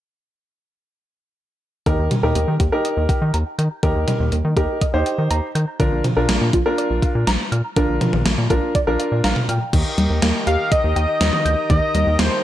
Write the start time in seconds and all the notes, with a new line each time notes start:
1.86 D#2 D#3 D#4 G4 A#4, kick, closed hi-hat
1.99 D#2
2.11 G3, closed hi-hat, mid tom
2.23 D#2 D#4 G4 A#4
2.35 D#2 A#3, closed hi-hat
2.48 D#3
2.60 D#2 G4, kick, closed hi-hat
2.72 D#4 G4 A#4
2.85 D#5, closed hi-hat
2.97 D#2
3.09 G5, kick, closed hi-hat
3.22 D#3
3.34 D#2 A#5, closed hi-hat
3.58 D#3 G6, closed hi-hat
3.83 D#2 D#3 D#4 G4 A#4, kick, closed hi-hat
3.95 D#2
4.08 G3, closed hi-hat, mid tom
4.20 D#2
4.32 D#2 A#3, closed hi-hat
4.45 D#3
4.57 D#2 D#4 G4 A#4, kick, closed hi-hat
4.81 D#5, kick, closed hi-hat
4.94 D#2 D#4 G4 C5
5.06 G5, closed hi-hat
5.18 D#3
5.31 D#2 A#5, closed hi-hat
5.55 D#3 G6, closed hi-hat
5.80 A#1 D3 D4 F4 A#4, kick, closed hi-hat
5.92 A#1
6.04 F3, closed hi-hat, mid tom
6.17 A#1 D4 F4 A#4
6.29 A#1 A#3, snare, closed hi-hat
6.41 A#2
6.53 A#1 F4, kick, closed hi-hat
6.66 D4 F4 A#4
6.78 D5, closed hi-hat
6.90 A#1
7.02 F5, kick, closed hi-hat
7.15 A#2
7.27 A#1 A#5, snare, closed hi-hat
7.52 A#2 F6, closed hi-hat
7.76 A#1 D3 D4 F4 A#4, kick, closed hi-hat
7.89 A#1
8.01 F3, closed hi-hat, mid tom
8.13 A#1, mid tom
8.26 A#1 A#3, snare, closed hi-hat
8.38 A#2
8.50 A#1 D4 F4 A#4, kick, closed hi-hat
8.75 D5, kick, closed hi-hat
8.87 A#1 D4 F4 A#4
8.99 D5 F5, closed hi-hat
9.12 A#2
9.24 A#1 F5 A#5, snare, closed hi-hat
9.36 mid tom
9.49 A#2 G5 F6, closed hi-hat
9.73 D#2 D#3 D#4 G4 A#4, kick, closed hi-hat, crash
9.98 D#2 G3, closed hi-hat
10.10 D#2
10.22 D#2 A#3, snare, closed hi-hat
10.47 D#2 G4 F5, closed hi-hat
10.72 D#5, kick, closed hi-hat
10.84 D#2
10.96 D#2 G5, closed hi-hat
11.21 D#2 A#5, snare, closed hi-hat
11.33 mid tom
11.45 D2 G6, closed hi-hat
11.70 D#2 D#3 D#5, kick, closed hi-hat
11.94 D#2 G3, closed hi-hat
12.07 D#2
12.19 D#2 A#3 C5, snare, closed hi-hat